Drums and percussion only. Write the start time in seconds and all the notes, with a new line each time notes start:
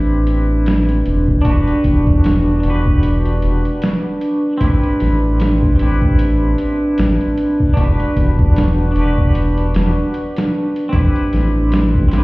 0.27 closed hi-hat
0.66 snare, closed hi-hat
0.89 closed hi-hat
1.06 closed hi-hat
1.28 kick
1.45 kick, closed hi-hat
1.68 closed hi-hat
1.84 kick, closed hi-hat
2.07 kick
2.24 snare, closed hi-hat
2.63 closed hi-hat
2.86 kick
3.03 closed hi-hat
3.25 closed hi-hat
3.42 closed hi-hat
3.65 closed hi-hat
3.82 snare, closed hi-hat
4.21 closed hi-hat
4.61 kick, closed hi-hat
4.83 closed hi-hat
5.00 snare, closed hi-hat
5.40 snare, closed hi-hat
5.62 kick
5.79 closed hi-hat
6.02 kick
6.19 closed hi-hat
6.58 closed hi-hat
6.98 snare, closed hi-hat
7.21 closed hi-hat
7.38 closed hi-hat
7.60 kick
7.77 kick, closed hi-hat
8.00 closed hi-hat
8.16 kick, closed hi-hat
8.39 kick
8.56 snare, closed hi-hat
8.96 closed hi-hat
9.18 kick
9.35 closed hi-hat
9.58 closed hi-hat
9.74 snare, closed hi-hat
10.14 closed hi-hat
10.36 snare, closed hi-hat
10.76 closed hi-hat
10.93 kick, closed hi-hat
11.16 closed hi-hat
11.33 snare, closed hi-hat
11.72 snare, closed hi-hat
11.94 kick
12.11 snare, closed hi-hat